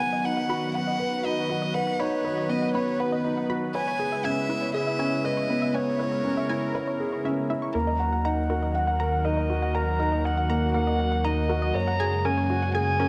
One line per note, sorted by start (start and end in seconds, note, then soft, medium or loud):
0.00 3.70 D#3 medium
0.00 3.70 F#3 medium
0.00 7.70 B3 medium
0.00 3.71 F#4 medium
0.00 5.71 B4 medium
0.00 0.23 F#5 medium
0.00 0.27 G#5 medium
0.13 0.21 D#5 medium
0.24 0.39 D#4 medium
0.24 0.74 F#5 medium
0.37 0.49 F#5 medium
0.49 0.73 F#4 medium
0.49 0.55 B5 medium
0.74 0.80 B4 medium
0.74 0.98 F#5 medium
0.74 1.26 F#5 medium
0.87 0.96 D#5 medium
0.99 1.23 B4 medium
1.12 1.24 F#5 medium
1.24 1.48 D#4 medium
1.24 1.76 D#5 medium
1.24 1.30 B5 loud
1.49 1.73 F#4 medium
1.49 1.55 B4 medium
1.62 1.70 D#5 medium
1.74 1.98 B4 medium
1.74 2.02 F#5 medium
1.87 1.99 F#5 medium
1.99 2.23 D#4 medium
1.99 2.51 C#5 medium
1.99 2.05 B5 medium
2.25 2.30 B4 medium
2.25 2.48 D#5 medium
2.38 2.46 D#5 medium
2.49 2.64 B3 medium
2.49 2.74 D#5 medium
2.62 2.74 F#5 medium
2.74 2.89 B3 medium
2.74 3.01 C#5 medium
2.74 2.80 B5 medium
2.99 3.50 B4 medium
2.99 3.05 B4 medium
2.99 3.24 F#5 medium
3.12 3.21 D#5 medium
3.24 3.39 D#4 medium
3.37 3.49 F#5 medium
3.50 3.73 F#4 medium
3.50 3.55 B5 medium
3.75 7.71 C#3 medium
3.75 7.71 G#3 medium
3.75 7.71 E4 medium
3.75 3.80 B4 medium
3.75 3.99 C#5 medium
3.75 4.26 G#5 loud
3.88 3.96 C#5 medium
3.99 4.23 G#4 medium
4.12 4.24 E5 medium
4.24 4.48 C#4 medium
4.24 4.74 E5 medium
4.24 4.30 G#5 loud
4.49 4.73 E4 medium
4.49 4.55 B4 medium
4.62 4.70 C#5 medium
4.74 4.98 G#4 medium
4.74 5.27 E5 medium
4.87 4.99 E5 medium
4.99 5.23 C#4 medium
4.99 5.05 G#5 medium
5.24 5.48 B4 medium
5.24 5.30 B4 medium
5.24 5.77 D#5 medium
5.37 5.45 C#5 medium
5.50 5.64 B3 medium
5.62 5.74 E5 medium
5.74 5.89 B3 medium
5.74 7.73 A#4 medium
5.74 7.25 C#5 medium
5.74 5.80 G#5 medium
5.99 6.05 B4 medium
5.99 6.24 C#5 medium
6.12 6.20 C#5 medium
6.25 6.39 C#4 medium
6.37 6.49 E5 medium
6.49 6.74 E4 medium
6.49 6.55 G#5 loud
6.75 6.80 B4 medium
6.75 6.99 C#5 medium
6.87 6.96 C#5 medium
7.00 7.24 G#4 medium
7.13 7.17 C#5 medium
7.25 7.49 C#4 medium
7.25 7.37 E5 medium
7.50 7.74 E4 medium
7.50 7.55 E5 medium
7.62 7.70 C#6 medium
7.74 11.72 D#2 medium
7.74 11.71 D#3 medium
7.74 13.09 F#3 medium
7.74 13.09 A#3 medium
7.74 7.89 A#3 medium
7.74 13.09 F#4 medium
7.74 11.71 A#4 medium
7.74 7.80 A#4 medium
7.74 8.27 A#5 medium
7.87 7.95 D#5 medium
7.99 8.23 F#5 medium
8.12 8.24 F#5 medium
8.25 8.39 D#4 medium
8.25 8.74 F#5 medium
8.25 8.30 A#5 loud
8.50 8.74 F#4 medium
8.50 8.55 A#4 medium
8.63 8.71 D#5 medium
8.75 8.99 F#5 medium
8.75 9.26 F#5 medium
8.87 8.99 F#5 medium
9.00 9.24 A#4 medium
9.00 9.05 A#5 medium
9.25 9.49 D#4 medium
9.25 9.30 A#4 medium
9.25 9.76 D#5 medium
9.37 9.45 D#5 medium
9.50 9.74 F#4 medium
9.62 9.74 F#5 medium
9.75 9.99 A#4 medium
9.75 9.80 A#5 medium
9.75 10.27 A#5 loud
9.99 10.23 D#4 medium
9.99 10.05 A#4 medium
10.12 10.20 D#5 medium
10.24 10.48 D#5 medium
10.24 10.74 F#5 medium
10.37 10.49 F#5 medium
10.50 10.64 A#3 medium
10.50 10.55 A#5 loud
10.74 10.89 A#3 medium
10.74 10.80 A#4 medium
10.74 11.26 F#5 medium
10.87 10.95 D#5 medium
10.99 11.23 F#5 medium
11.12 11.24 F#5 medium
11.24 11.39 D#4 medium
11.24 11.76 D#5 medium
11.24 11.30 A#5 loud
11.49 11.73 F#4 medium
11.49 11.55 A#4 medium
11.62 11.70 D#5 medium
11.74 13.09 F#2 medium
11.74 13.09 C#3 medium
11.74 13.09 G#3 medium
11.74 11.99 C#5 medium
11.74 12.26 A#5 loud
11.87 11.99 F#5 medium
12.00 12.24 G#4 medium
12.00 12.05 G#5 loud
12.25 12.49 C#4 medium
12.25 12.30 A#4 medium
12.25 12.74 G#5 medium
12.38 12.46 C#5 medium
12.50 12.74 F#4 medium
12.62 12.74 F#5 medium
12.75 12.99 G#4 medium
12.75 12.80 G#5 medium
12.75 13.09 G#5 loud
13.00 13.09 C#4 loud
13.00 13.05 A#4 medium